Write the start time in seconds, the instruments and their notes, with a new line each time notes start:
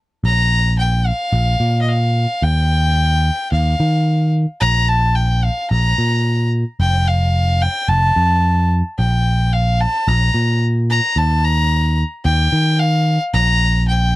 0.24 picked electric bass A#1, fiddle A#5
0.79 fiddle G5
1.06 fiddle F5
1.33 picked electric bass A#1
1.60 picked electric bass A#2
1.82 fiddle D#5
1.88 fiddle F5
2.42 picked electric bass D#2, fiddle G5
3.52 picked electric bass D#2, fiddle F5
3.80 picked electric bass D#3
4.61 picked electric bass A#1, fiddle A#5
4.88 fiddle A5
5.15 fiddle G5
5.43 fiddle F5
5.70 picked electric bass A#1, fiddle A#5
5.98 picked electric bass A#2
6.80 picked electric bass F1, fiddle G5
7.08 fiddle F5
7.62 fiddle G5
7.89 picked electric bass F1, fiddle A5
8.16 picked electric bass F2
8.99 picked electric bass A#1, fiddle G5
9.53 fiddle F5
9.80 fiddle A5
10.08 picked electric bass A#1, fiddle A#5
10.34 picked electric bass A#2
10.91 fiddle A#5
11.16 picked electric bass D#2, fiddle A5
11.45 fiddle A#5
12.25 picked electric bass D#2, fiddle G5
12.52 picked electric bass D#3
12.79 fiddle F5
13.34 picked electric bass A#1, fiddle A#5
13.88 fiddle G5